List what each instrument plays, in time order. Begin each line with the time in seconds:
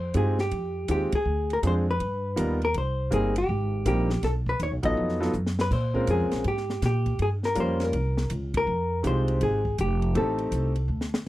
Already playing: upright bass F2, hollow-body jazz guitar C5
0.14 upright bass G2, grand piano G#3 C4 D#4 F4 G4, hollow-body jazz guitar G#4, kick, hi-hat pedal, ride
0.39 hollow-body jazz guitar G4, snare
0.51 upright bass F2, kick, ride
0.88 upright bass D#2, grand piano G#3 C4 D#4 F4 G4, hollow-body jazz guitar G4, kick, hi-hat pedal, ride
1.12 hollow-body jazz guitar G#4, muted upright bass stroke, kick, ride
1.25 upright bass D2
1.50 hollow-body jazz guitar A#4, ride
1.62 upright bass F2, grand piano G#3 C4 D4 F4 G#4, kick, hi-hat pedal, ride
1.67 hollow-body jazz guitar C5
1.91 hollow-body jazz guitar B4
2.00 upright bass G2, kick, ride
2.36 upright bass D#2, grand piano G3 B3 D#4 F4 A#4, kick, hi-hat pedal, ride
2.62 hollow-body jazz guitar A#4, ride
2.74 upright bass C2, hollow-body jazz guitar C5, kick, ride
3.11 upright bass G1, grand piano G3 A#3 C4 D#4 A#4, hollow-body jazz guitar G#4, kick, hi-hat pedal, ride
3.36 hollow-body jazz guitar G4, ride
3.49 upright bass G#1, kick
3.85 upright bass A#1, grand piano G3 A#3 C4 D#4 A#4, hollow-body jazz guitar G4, kick, hi-hat pedal, ride
4.10 snare
4.23 upright bass B1, hollow-body jazz guitar A4, kick, snare, ride
4.46 hollow-body jazz guitar B4, kick
4.60 upright bass D#2, hollow-body jazz guitar C#5, kick, hi-hat pedal, ride
4.71 upright bass B1
4.83 upright bass A1, grand piano F#3 B3 D#4 F4 A4, hollow-body jazz guitar D#5, kick, ride
4.97 upright bass F2
5.09 snare
5.20 grand piano F#3 B3 D#4 F4 A4, snare
5.33 upright bass F#2, hi-hat pedal
5.46 snare
5.59 hollow-body jazz guitar B4, snare
5.71 upright bass A#2, hollow-body jazz guitar C5, kick, crash
5.94 grand piano G#3 C4 C#4 F4 A#4, kick
6.07 upright bass F2, hollow-body jazz guitar G#4, kick, hi-hat pedal, ride
6.21 upright bass C#2
6.31 upright bass A#1, snare, ride
6.44 upright bass G#2, hollow-body jazz guitar G4, kick, ride
6.57 snare
6.70 snare
6.82 upright bass A#2, hollow-body jazz guitar G4, kick, snare, hi-hat pedal, ride
7.06 kick, ride
7.19 upright bass G2, hollow-body jazz guitar G#4, kick, ride
7.43 hollow-body jazz guitar A#4, snare
7.55 upright bass F2, grand piano G3 A#3 C#4 F4 A#4, kick, hi-hat pedal, ride
7.60 hollow-body jazz guitar C5
7.80 hollow-body jazz guitar A#4, snare, ride
7.93 upright bass C2, kick, ride
8.17 snare
8.30 upright bass C#2, kick, hi-hat pedal, ride
8.54 hollow-body jazz guitar A#4, kick, ride
8.67 upright bass F2
9.03 upright bass C2, grand piano G#3 C4 D#4 F4 G4, kick, hi-hat pedal, ride
9.07 hollow-body jazz guitar C5
9.28 ride
9.41 upright bass G#1, hollow-body jazz guitar G#4, kick, ride
9.65 kick
9.78 upright bass F1, hollow-body jazz guitar G4, kick, hi-hat pedal, ride
10.02 ride
10.15 upright bass A1, grand piano A3 C4 D#4 G4 A4, hollow-body jazz guitar A4, kick, ride
10.38 ride
10.52 upright bass C2, kick, hi-hat pedal, ride
10.75 ride
10.88 upright bass D2
11.01 snare
11.14 snare